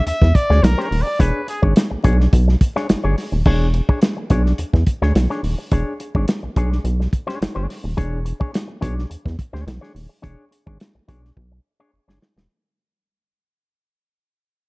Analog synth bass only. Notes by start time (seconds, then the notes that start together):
0.07 E2
0.22 E2
0.50 D2
0.63 B1
0.91 D#1
1.20 E1
1.63 G#1
1.91 B1
2.05 B1
2.33 B1
2.90 G1
3.04 G1
3.32 D#1
3.46 E1
4.30 B1
4.59 E2
4.73 E2
5.02 D2
5.15 B1
5.43 D#1
5.72 E1
6.15 G#1
6.43 B1
6.56 B1
6.84 B1
7.41 G1
7.56 G1
7.84 D#1
7.98 E1
8.83 B1
9.11 E2
9.25 E2
9.54 D2
9.67 B1
9.95 D#1
10.24 E1
10.67 G#1
10.95 B1
11.08 B1
11.37 B1
11.93 G1
12.08 G1
12.36 D#1